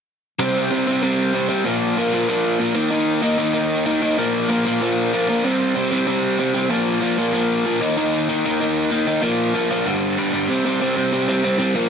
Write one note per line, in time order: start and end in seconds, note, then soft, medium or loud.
0.39 0.69 C3 medium
0.39 0.70 G3 loud
0.39 0.70 C4 loud
0.71 0.87 C3 medium
0.71 0.86 G3 medium
0.71 0.86 C4 loud
0.87 1.01 C3 medium
0.87 1.01 G3 medium
0.87 1.02 C4 loud
1.02 1.33 C3 loud
1.02 1.33 G3 loud
1.02 1.34 C4 loud
1.34 1.49 C3 medium
1.34 1.48 G3 medium
1.34 1.48 C4 medium
1.49 1.64 C3 medium
1.49 1.65 G3 medium
1.49 1.64 C4 loud
1.65 1.95 A#2 loud
1.65 1.96 F3 loud
1.65 1.97 A#3 loud
1.97 2.13 A#2 medium
1.97 2.12 F3 loud
1.97 2.13 A#3 loud
2.13 2.27 A#2 medium
2.13 2.28 F3 medium
2.13 2.29 A#3 medium
2.29 2.58 A#2 medium
2.29 2.59 F3 loud
2.29 2.60 A#3 medium
2.59 2.75 A#2 medium
2.59 2.75 F3 medium
2.59 2.75 A#3 loud
2.75 2.90 D#3 medium
2.75 2.91 A#3 loud
2.75 2.90 D#4 loud
2.91 3.22 D#3 medium
2.91 3.22 A#3 medium
2.91 3.21 D#4 loud
3.22 3.37 D#3 medium
3.22 3.38 A#3 loud
3.22 3.37 D#4 loud
3.38 3.53 D#3 medium
3.38 3.53 A#3 medium
3.38 3.53 D#4 loud
3.54 3.85 D#3 loud
3.54 3.85 A#3 medium
3.54 3.84 D#4 loud
3.86 4.00 D#3 medium
3.86 4.01 A#3 medium
3.86 4.01 D#4 loud
4.02 4.17 D#3 medium
4.02 4.17 A#3 loud
4.02 4.17 D#4 medium
4.18 4.48 A#2 medium
4.18 4.48 F3 loud
4.18 4.49 A#3 loud
4.49 4.65 A#2 medium
4.49 4.65 F3 medium
4.49 4.64 A#3 loud
4.65 4.80 A#2 medium
4.65 4.80 F3 medium
4.65 4.80 A#3 loud
4.81 5.12 A#2 medium
4.81 5.12 F3 loud
4.81 5.13 A#3 medium
5.13 5.28 A#2 medium
5.13 5.28 F3 medium
5.13 5.28 A#3 medium
5.29 5.44 A#2 medium
5.29 5.44 F3 medium
5.29 5.44 A#3 medium
5.44 5.74 C3 loud
5.44 5.75 G3 loud
5.44 5.75 C4 loud
5.75 5.91 C3 medium
5.75 5.91 G3 loud
5.75 5.90 C4 loud
5.91 6.05 C3 medium
5.91 6.06 G3 medium
5.91 6.06 C4 medium
6.07 6.38 C3 loud
6.07 6.38 G3 loud
6.07 6.38 C4 loud
6.39 6.54 C3 medium
6.39 6.54 G3 loud
6.39 6.53 C4 medium
6.54 6.69 C3 medium
6.54 6.70 G3 medium
6.54 6.70 C4 loud
6.70 7.00 A#2 medium
6.70 7.01 F3 loud
6.70 7.02 A#3 loud
7.02 7.18 A#2 loud
7.02 7.17 F3 loud
7.02 7.18 A#3 loud
7.18 7.32 A#2 medium
7.18 7.33 F3 medium
7.18 7.34 A#3 loud
7.34 7.64 A#2 medium
7.34 7.65 F3 loud
7.34 7.66 A#3 loud
7.66 7.80 A#2 medium
7.66 7.81 F3 medium
7.66 7.81 A#3 medium
7.81 7.97 D#3 loud
7.81 7.97 A#3 loud
7.81 7.96 D#4 loud
7.97 8.29 D#3 medium
7.97 8.28 A#3 medium
7.97 8.28 D#4 loud
8.29 8.44 D#3 medium
8.29 8.44 A#3 loud
8.29 8.45 D#4 loud
8.45 8.60 D#3 loud
8.45 8.60 A#3 medium
8.45 8.59 D#4 loud
8.61 8.91 D#3 medium
8.61 8.91 A#3 loud
8.61 8.90 D#4 loud
8.92 9.06 D#3 medium
8.92 9.06 A#3 medium
8.92 9.06 D#4 medium
9.07 9.22 D#3 loud
9.07 9.22 A#3 medium
9.07 9.22 D#4 loud
9.22 9.53 A#2 medium
9.22 9.54 F3 loud
9.22 9.54 A#3 loud
9.54 9.70 A#2 loud
9.54 9.70 F3 loud
9.54 9.69 A#3 loud
9.71 9.86 A#2 medium
9.71 9.86 F3 medium
9.71 9.85 A#3 medium
9.86 10.16 G2 medium
9.86 10.17 D3 loud
9.86 10.17 G3 loud
10.17 10.33 G2 medium
10.17 10.33 D3 medium
10.17 10.32 G3 medium
10.33 10.49 G2 medium
10.33 10.48 D3 medium
10.33 10.48 G3 loud
10.48 10.64 C3 medium
10.48 10.64 G3 medium
10.48 10.64 C4 loud
10.65 10.79 C3 medium
10.65 10.80 G3 medium
10.65 10.80 C4 medium
10.81 10.96 C3 medium
10.81 10.96 G3 loud
10.81 10.95 C4 loud
10.96 11.11 C3 medium
10.96 11.12 G3 medium
10.96 11.12 C4 medium
11.12 11.28 C3 medium
11.12 11.28 G3 medium
11.12 11.27 C4 loud
11.28 11.42 C3 medium
11.28 11.43 G3 medium
11.28 11.43 C4 medium
11.44 11.58 C3 loud
11.44 11.58 G3 medium
11.44 11.57 C4 loud
11.59 11.74 C3 medium
11.59 11.75 G3 medium
11.59 11.74 C4 medium
11.75 11.89 A#2 medium
11.75 11.89 F3 loud
11.75 11.89 A#3 loud